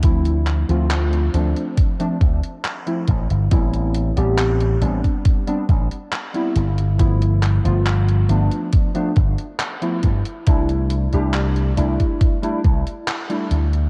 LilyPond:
<<
  \new Staff \with { instrumentName = "Synth keys" } { \time 4/4 \key c \major \tempo 4 = 69 <f a c' e'>8. <f a c' f'>8. <f a c' d'>8. <f a c' d'>16 r8. <f a c' e'>16 r8 | <g b c' e'>8. <g b c' g'>8. <g b c' d'>8. <g b c' d'>16 r8. <g b c' e'>16 r8 | <f a b e'>8. <f a b f'>8. <f a b d'>8. <f a b d'>16 r8. <f a b e'>16 r8 | <g a d' e'>8. <g a d' g'>8. <g a d' e'>8. <g a d' e'>16 r8. <g a d' e'>16 r8 | }
  \new Staff \with { instrumentName = "Slap bass" } { \clef bass \time 4/4 \key c \major d,8. d,8. d,16 r8. d,16 r8. a,,16 g,,16 | a,,8. a,,8. a,,16 r8. a,,16 r8. g,,8~ | g,,8. g,,8. g,,16 r8. g,,16 r8. g,16 r16 | c,8. c,8. c,16 r8. c,16 r8. d,8 | }
  \new DrumStaff \with { instrumentName = "Drums" } \drummode { \time 4/4 <hh bd>16 hh16 <hc hh>16 hh16 <hc hh>16 hh16 hh16 hh16 <hh bd>16 hh16 <hh bd>16 hh16 <hc hh>16 hh16 <hh bd>16 hh16 | <hh bd>16 hh16 hh16 hh16 <hc hh>16 hh16 hh16 <hh bd>16 <hh bd>16 hh16 <hh bd>16 hh16 <hc hh>16 hh16 hh16 hh16 | <hh bd>16 hh16 <hc hh>16 hh16 <hc hh>16 hh16 hh16 hh16 <hh bd>16 hh16 <hh bd>16 hh16 <hc hh>16 hh16 <hh bd>16 hh16 | <hh bd>16 hh16 hh16 hh16 <hc hh>16 hh16 hh16 <hh bd>16 <hh bd>16 hh16 <hh bd>16 hh16 <hc hh>16 hh16 hh16 hh16 | }
>>